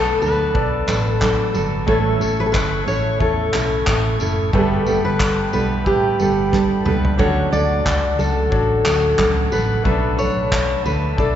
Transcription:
Already playing: fingered electric bass B1, nylon-string guitar F#3 A3 D4 A4, grand piano B3 A4 D5, steel-string acoustic guitar A4, tonewheel organ B4 A5
0.21 fingered electric bass D2, nylon-string guitar F#3 A3 D4 A4, steel-string acoustic guitar B4, tambourine
0.54 fingered electric bass B1, grand piano B3 A4 D5, kick
0.87 fingered electric bass A1, nylon-string guitar F#3 A3 D4 A4, clap, tambourine
1.09 steel-string acoustic guitar A4
1.20 nylon-string guitar F#3 A3 D4 A4, kick, clap
1.53 fingered electric bass G1, nylon-string guitar F#3 A3 D4 A4, tambourine
1.87 fingered electric bass A1, nylon-string guitar A2 E3 A3 C#4 E4 A4, grand piano A3 E4 C#5, tonewheel organ A4 E5 C#6, steel-string acoustic guitar A4, kick
2.19 fingered electric bass A1, nylon-string guitar A3 C#4 E4 A4, tambourine
2.40 steel-string acoustic guitar B4
2.46 steel-string acoustic guitar A4
2.52 fingered electric bass G1, steel-string acoustic guitar B4, kick, clap
2.85 fingered electric bass A1, nylon-string guitar A3 C#4 E4 A4, steel-string acoustic guitar C#5, tambourine
3.19 fingered electric bass E2, grand piano A3 E4 C#5, steel-string acoustic guitar A4, kick
3.53 fingered electric bass B1, nylon-string guitar A3 C#4 E4 A4, clap, tambourine
3.86 fingered electric bass A1, nylon-string guitar A3 C#4 E4 A4, kick, clap
4.19 fingered electric bass F#1, nylon-string guitar A3 C#4 E4 A4, tambourine
4.53 fingered electric bass G1, nylon-string guitar G3 B3 D4 A4, grand piano A3 G4 B4, steel-string acoustic guitar A4, tonewheel organ G5 B5, kick
4.86 nylon-string guitar G3 B3 D4 A4, tambourine
5.05 fingered electric bass G1, steel-string acoustic guitar B4
5.20 kick, clap
5.53 fingered electric bass B1, nylon-string guitar G3 B3 D4 A4, steel-string acoustic guitar B4, tambourine
5.85 fingered electric bass A1, grand piano A3 G4 B4, steel-string acoustic guitar G4, kick
6.19 fingered electric bass G1, nylon-string guitar G3 B3 D4 A4, tambourine
6.51 nylon-string guitar G3 B3 D4 A4, kick, snare
6.85 fingered electric bass C#2, nylon-string guitar G3 B3 D4 A4, steel-string acoustic guitar B4, mid tom
7.05 floor tom
7.17 fingered electric bass D2, nylon-string guitar D3 F#3 A3 C#4 A4, grand piano D4 F#4 F#5, tonewheel organ A4 F#5, steel-string acoustic guitar C#5, kick
7.51 fingered electric bass D2, nylon-string guitar F#3 A3 A4, steel-string acoustic guitar D5, tambourine
7.86 fingered electric bass C#2, kick, clap
8.17 fingered electric bass C#2, nylon-string guitar F#3 A3 C#4 A4, steel-string acoustic guitar A4, tambourine
8.50 fingered electric bass A1, grand piano D4 F#4 C#5, kick
8.84 fingered electric bass D2, nylon-string guitar F#3 A3 C#4 A4, clap, tambourine
9.18 fingered electric bass C#2, nylon-string guitar F#3 A3 C#4 A4, kick, clap
9.51 fingered electric bass A1, nylon-string guitar F#3 A3 C#4 A4, steel-string acoustic guitar B4, tambourine
9.84 fingered electric bass B1, nylon-string guitar B2 F#3 A3 D4 A4, grand piano A3 C#4 B4, tonewheel organ B4 A5, kick
9.91 grand piano D4
10.17 nylon-string guitar F#3 A3 D4 A4, steel-string acoustic guitar C#5, tambourine
10.37 fingered electric bass B1
10.52 kick, clap
10.84 fingered electric bass D2, nylon-string guitar F#3 A3 D4 A4, steel-string acoustic guitar B4, tambourine
11.17 fingered electric bass B1, grand piano A3 D4 D5, steel-string acoustic guitar A4, kick

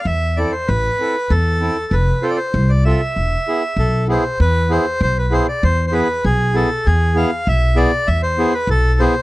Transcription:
0.05 upright bass E2, accordion E5
0.37 accordion C4 E4 A4 D5
0.52 accordion C5
0.68 upright bass A1, accordion B4
0.99 accordion C4 E4 A4
1.30 upright bass E2, accordion A4
1.61 accordion C4 E4 A4
1.91 upright bass F1, accordion B4
2.22 accordion C4 F4 A4 C5
2.30 accordion D5
2.37 accordion C5
2.54 upright bass C2
2.69 accordion D5
2.85 accordion C4 F4 A4 E5
3.16 upright bass E1
3.48 accordion B3 E4 G#4
3.77 upright bass B1, accordion A4
4.08 accordion B3 E4 G#4 C5
4.40 upright bass E2, accordion B4
4.69 accordion B3 E4 G#4 C5
5.01 upright bass B1, accordion C5
5.18 accordion B4
5.30 accordion B3 E4 G#4 C5
5.48 accordion D5
5.63 upright bass E2, accordion C5
5.87 accordion C5
5.91 accordion B3 E4 G#4 B4
6.25 upright bass B1, accordion G#4
6.53 accordion B3 E4 G#4 A4
6.87 upright bass E2, accordion G#4
7.15 accordion B3 E4 G#4 F5
7.47 upright bass B1, accordion E5
7.76 accordion B3 E4 G#4 D5
8.07 upright bass E2, accordion E5
8.23 accordion C5
8.38 accordion B3 E4 G#4
8.54 accordion B4
8.67 upright bass B1, accordion A4
8.99 accordion B3 E4 G#4 C5

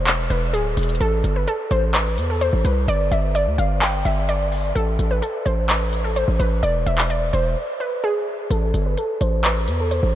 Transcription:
Already playing: 808-style bass E1, synth pluck C5
0.07 clap, closed hi-hat
0.30 808-style bass E1, synth pluck B4, closed hi-hat
0.53 808-style bass D1, synth pluck G#4, closed hi-hat
0.77 808-style bass E1, closed hi-hat, open hi-hat
0.83 closed hi-hat
0.89 closed hi-hat
0.95 closed hi-hat
1.01 808-style bass A1, synth pluck A4, closed hi-hat
1.24 808-style bass G1, closed hi-hat
1.36 synth pluck B4
1.47 synth pluck A4, closed hi-hat
1.71 808-style bass A1, synth pluck C5, closed hi-hat
1.94 synth pluck B4, clap, closed hi-hat
2.18 808-style bass E2, closed hi-hat
2.30 synth pluck A4
2.41 synth pluck C5, closed hi-hat
2.53 808-style bass A1
2.65 808-style bass C2, synth pluck B4, closed hi-hat
2.88 808-style bass G1, synth pluck D5, closed hi-hat
3.11 808-style bass G1, synth pluck E5, closed hi-hat
3.35 synth pluck D5, closed hi-hat
3.47 808-style bass D2
3.58 808-style bass G1, synth pluck F5, closed hi-hat
3.82 synth pluck G5, clap, closed hi-hat
4.05 808-style bass G1, synth pluck E5, closed hi-hat
4.29 synth pluck D5, closed hi-hat
4.52 open hi-hat
4.75 808-style bass A1, synth pluck A4, closed hi-hat
4.99 808-style bass A1, closed hi-hat
5.11 synth pluck B4
5.22 synth pluck A4, closed hi-hat
5.46 808-style bass A1, synth pluck C5, closed hi-hat
5.69 synth pluck B4, clap, closed hi-hat
5.93 closed hi-hat
6.04 synth pluck A4
6.16 synth pluck C5, closed hi-hat
6.28 808-style bass A1
6.39 808-style bass A1, synth pluck B4, closed hi-hat
6.63 808-style bass E1, synth pluck D5, closed hi-hat
6.86 808-style bass E1, synth pluck E5, closed hi-hat
6.98 clap
7.10 synth pluck D5, closed hi-hat
7.33 808-style bass E1, synth pluck C5, closed hi-hat
7.80 synth pluck B4
8.04 synth pluck G#4
8.51 808-style bass A1, synth pluck A4, closed hi-hat
8.74 808-style bass G1, closed hi-hat
8.86 synth pluck B4
8.97 synth pluck A4, closed hi-hat
9.21 808-style bass A1, synth pluck C5, closed hi-hat
9.44 synth pluck B4, clap, closed hi-hat
9.68 808-style bass E2, closed hi-hat
9.80 synth pluck A4
9.91 synth pluck C5, closed hi-hat
10.03 808-style bass A1

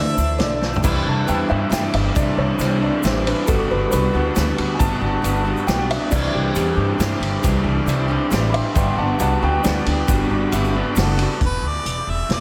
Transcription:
Already playing: upright bass D2, clean electric guitar D3 A3, tonewheel organ E3 D4 A4, steel-string acoustic guitar A3 D4 E4, grand piano E4 A4 C5, harmonica E5
0.00 upright piano D5
0.17 upright bass D2, steel-string acoustic guitar A3 E4, clean electric guitar D4, shaker
0.38 upright bass B1, clean electric guitar D3, steel-string acoustic guitar A3 D4 E4, grand piano E4 A4 D5, upright piano C#5, snare, closed hi-hat
0.43 upright piano D5
0.61 clean electric guitar A3, steel-string acoustic guitar D4 E4, snare
0.73 floor tom, shaker
0.82 upright bass C2, clean electric guitar C3 E3 G3 D4 E4, tonewheel organ E3 D4 C5, grand piano E4 G4 C5 D5, upright piano B5, kick, crash, shaker
1.04 upright bass C2, clean electric guitar G3 D4 E4
1.09 upright piano A5
1.27 upright bass E2, clean electric guitar E3 G3 D4 E4, grand piano E4 G4 C5 D5, upright piano G5, ride, shaker
1.48 upright bass G2, clean electric guitar C3 E3 G3 D4 E4, upright piano E5
1.70 upright bass G2, clean electric guitar E3 G3 D4 E4, grand piano E4 G4 C5 E5, upright piano G5, snare, ride, shaker
1.93 upright bass G1, clean electric guitar G3 D4 E4, upright piano E5, ride
2.14 upright bass C2, clean electric guitar C3 E3 G3 D4 E4, upright piano D5, kick, ride, shaker
2.36 upright bass C2, clean electric guitar G3 D4 E4, upright piano C#5
2.58 upright bass C2, clean electric guitar E3 G3 D4 E4, grand piano E4 G4 C5 D5, upright piano C5, ride, shaker
2.80 clean electric guitar C3 E3 G3 D4 E4, upright piano D5
3.02 upright bass A1, clean electric guitar E3 G3 D4 E4, grand piano E4 G4 C5 E5, upright piano C5, snare, ride, shaker
3.24 clean electric guitar G3 D4 E4, upright piano B4, ride
3.45 upright bass G1, clean electric guitar G3 B3 D4 F#4, tonewheel organ G3 F#4 B4, grand piano F#4 B4 D5, upright piano A4, kick, ride, shaker
3.68 upright bass G1, clean electric guitar B3 D4 F#4, upright piano B4
3.87 clean electric guitar G3 B3, upright piano A#4 B4
3.92 upright bass C2, clean electric guitar D4 F#4, grand piano F#4 B4 D5, ride, shaker
4.11 upright bass D2, clean electric guitar G3 B3 D4 F#4
4.34 upright bass D2, clean electric guitar G3 B3 D4 F#4, grand piano F#4 B4 D5, snare, ride, shaker
4.56 upright bass D2, clean electric guitar B3 D4 F#4, ride
4.74 clean electric guitar G3, upright piano G#5
4.79 upright bass G1, clean electric guitar B3 D4 F#4, upright piano A5, kick, ride, shaker
5.01 upright bass G1, clean electric guitar B3 D4 F#4
5.22 upright bass G1, clean electric guitar G3 B3 D4 F#4, grand piano F#4 B4 D5, ride, shaker
5.35 shaker
5.44 clean electric guitar G3 B3 D4 F#4
5.57 shaker
5.67 upright bass B1, clean electric guitar G3 B3 D4 F#4, grand piano F#4 B4 D5, upright piano G5, snare, ride, shaker
5.88 clean electric guitar B3 D4 F#4, upright piano E5, ride
6.09 upright bass C2, clean electric guitar C3 E3 G3 D4 G4, tonewheel organ E3 D4 C5, grand piano E4 G4 C5 D5, upright piano D5, kick, crash, shaker
6.31 upright bass C2, clean electric guitar G3 D4 G4, upright piano G4
6.53 upright bass E2, clean electric guitar E3 G3 D4 G4, grand piano E4 G4 C5 D5, ride, shaker
6.76 upright bass G2, clean electric guitar C3 E3 G3 D4 G4
6.98 upright bass G2, clean electric guitar E3 G3 D4 G4, grand piano E4 G4 C5 E5, snare, ride, shaker
7.19 upright bass G1, clean electric guitar G3 D4 G4, ride
7.42 upright bass C2, clean electric guitar C3 E3 G3 D4 G4, kick, ride, shaker
7.63 upright bass C2, clean electric guitar G3 D4 G4
7.86 upright bass C2, clean electric guitar E3 G3 D4 G4, grand piano E4 G4 C5 D5, ride, shaker
8.08 clean electric guitar C3 E3 G3 D4 G4
8.30 upright bass A1, clean electric guitar E3 G3 D4 G4, grand piano E4 G4 C5 D5, snare, ride, shaker
8.50 clean electric guitar D4 G4, upright piano B5
8.54 clean electric guitar G3, upright piano E5 C6, ride
8.74 upright bass G1, clean electric guitar G3 B3 D4 F#4, tonewheel organ G3 D4 B4, grand piano F#4 B4 D5, upright piano G5 C6, kick, ride, shaker
8.96 upright bass G1, clean electric guitar B3 D4 F#4, upright piano F#5 A5
9.18 upright bass C2, clean electric guitar G3 B3 D4 F#4, grand piano F#4 B4 D5, upright piano F#5 A5, ride, shaker
9.40 upright bass D2, clean electric guitar G3 B3 D4 F#4, upright piano G5
9.63 upright bass D2, clean electric guitar G3 B3 D4 F#4, grand piano D4 B4 D5, snare, ride, shaker
9.84 upright bass D2, clean electric guitar B3 D4 F#4, ride
10.07 upright bass G1, clean electric guitar G3 B3 D4 F#4, kick, ride, shaker
10.30 upright bass G1, clean electric guitar B3 D4 F#4
10.51 upright bass G1, clean electric guitar G3 B3 D4 F#4, grand piano F#4 B4 E5, ride, shaker
10.64 shaker
10.73 clean electric guitar G3 B3 D4 F#4
10.95 upright bass F#1, clean electric guitar G3 B3 D4 F#4, grand piano F#4 B4 D5, snare, ride, shaker
11.02 harmonica A4
11.18 clean electric guitar B3 D4 F#4, ride
11.41 upright bass E1, kick, closed hi-hat
11.46 harmonica B4
11.62 upright bass D2
11.68 harmonica D5
11.85 upright bass E1, closed hi-hat
12.07 upright bass E1, harmonica E5
12.29 upright bass E1, snare, closed hi-hat
12.33 harmonica D5

